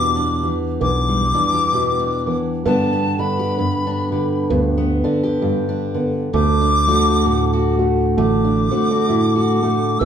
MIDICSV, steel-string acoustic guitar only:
0, 0, Header, 1, 2, 480
1, 0, Start_track
1, 0, Tempo, 920245
1, 1387, Time_signature, 4, 2, 24, 8
1, 5242, End_track
2, 0, Start_track
2, 0, Title_t, "Steel-string acoustic guitar"
2, 0, Program_c, 0, 25
2, 0, Note_on_c, 0, 40, 70
2, 0, Note_on_c, 0, 47, 62
2, 0, Note_on_c, 0, 52, 63
2, 0, Note_on_c, 0, 55, 52
2, 0, Note_on_c, 0, 62, 58
2, 0, Note_on_c, 0, 67, 68
2, 80, Note_off_c, 0, 62, 0
2, 82, Note_on_c, 0, 62, 52
2, 218, Note_off_c, 0, 52, 0
2, 222, Note_off_c, 0, 47, 0
2, 224, Note_on_c, 0, 52, 53
2, 416, Note_off_c, 0, 40, 0
2, 422, Note_on_c, 0, 40, 74
2, 559, Note_off_c, 0, 55, 0
2, 565, Note_on_c, 0, 55, 51
2, 692, Note_off_c, 0, 52, 0
2, 698, Note_on_c, 0, 52, 60
2, 699, Note_off_c, 0, 62, 0
2, 701, Note_on_c, 0, 62, 59
2, 798, Note_off_c, 0, 67, 0
2, 804, Note_on_c, 0, 67, 63
2, 901, Note_on_c, 0, 47, 63
2, 1040, Note_off_c, 0, 62, 0
2, 1042, Note_on_c, 0, 62, 58
2, 1176, Note_off_c, 0, 52, 0
2, 1182, Note_on_c, 0, 52, 57
2, 1184, Note_off_c, 0, 47, 0
2, 1361, Note_off_c, 0, 52, 0
2, 1362, Note_off_c, 0, 67, 0
2, 1382, Note_off_c, 0, 40, 0
2, 1384, Note_on_c, 0, 43, 67
2, 1387, Note_off_c, 0, 55, 0
2, 1389, Note_on_c, 0, 50, 58
2, 1393, Note_on_c, 0, 59, 55
2, 1394, Note_off_c, 0, 62, 0
2, 1396, Note_on_c, 0, 62, 62
2, 1399, Note_on_c, 0, 67, 59
2, 1521, Note_off_c, 0, 59, 0
2, 1527, Note_on_c, 0, 59, 58
2, 1654, Note_off_c, 0, 50, 0
2, 1661, Note_on_c, 0, 50, 65
2, 1663, Note_off_c, 0, 62, 0
2, 1665, Note_on_c, 0, 62, 61
2, 1763, Note_off_c, 0, 67, 0
2, 1770, Note_on_c, 0, 67, 66
2, 1863, Note_off_c, 0, 43, 0
2, 1869, Note_on_c, 0, 43, 65
2, 2016, Note_off_c, 0, 62, 0
2, 2018, Note_on_c, 0, 62, 57
2, 2143, Note_off_c, 0, 50, 0
2, 2149, Note_on_c, 0, 50, 60
2, 2343, Note_off_c, 0, 43, 0
2, 2349, Note_on_c, 0, 43, 72
2, 2484, Note_off_c, 0, 59, 0
2, 2490, Note_on_c, 0, 59, 58
2, 2622, Note_off_c, 0, 50, 0
2, 2625, Note_off_c, 0, 62, 0
2, 2628, Note_on_c, 0, 50, 61
2, 2632, Note_on_c, 0, 62, 57
2, 2724, Note_off_c, 0, 67, 0
2, 2730, Note_on_c, 0, 67, 66
2, 2821, Note_off_c, 0, 43, 0
2, 2827, Note_on_c, 0, 43, 67
2, 2960, Note_off_c, 0, 62, 0
2, 2967, Note_on_c, 0, 62, 62
2, 3094, Note_off_c, 0, 50, 0
2, 3100, Note_on_c, 0, 50, 59
2, 3282, Note_off_c, 0, 43, 0
2, 3283, Note_off_c, 0, 62, 0
2, 3284, Note_off_c, 0, 59, 0
2, 3284, Note_off_c, 0, 67, 0
2, 3297, Note_off_c, 0, 50, 0
2, 3303, Note_on_c, 0, 50, 72
2, 3449, Note_on_c, 0, 62, 58
2, 3586, Note_on_c, 0, 57, 72
2, 3589, Note_on_c, 0, 66, 71
2, 3686, Note_off_c, 0, 66, 0
2, 3692, Note_on_c, 0, 66, 73
2, 3786, Note_on_c, 0, 45, 63
2, 3923, Note_off_c, 0, 66, 0
2, 3930, Note_on_c, 0, 66, 65
2, 4061, Note_off_c, 0, 57, 0
2, 4063, Note_on_c, 0, 57, 57
2, 4258, Note_off_c, 0, 50, 0
2, 4264, Note_on_c, 0, 50, 71
2, 4265, Note_off_c, 0, 45, 0
2, 4398, Note_off_c, 0, 62, 0
2, 4405, Note_on_c, 0, 62, 55
2, 4536, Note_off_c, 0, 57, 0
2, 4540, Note_off_c, 0, 66, 0
2, 4542, Note_on_c, 0, 57, 58
2, 4546, Note_on_c, 0, 66, 65
2, 4640, Note_off_c, 0, 66, 0
2, 4646, Note_on_c, 0, 66, 65
2, 4739, Note_on_c, 0, 45, 64
2, 4873, Note_off_c, 0, 66, 0
2, 4879, Note_on_c, 0, 66, 66
2, 5015, Note_off_c, 0, 57, 0
2, 5021, Note_on_c, 0, 57, 58
2, 5196, Note_off_c, 0, 66, 0
2, 5197, Note_off_c, 0, 57, 0
2, 5198, Note_off_c, 0, 62, 0
2, 5215, Note_off_c, 0, 45, 0
2, 5217, Note_on_c, 0, 48, 69
2, 5221, Note_off_c, 0, 50, 0
2, 5242, Note_off_c, 0, 48, 0
2, 5242, End_track
0, 0, End_of_file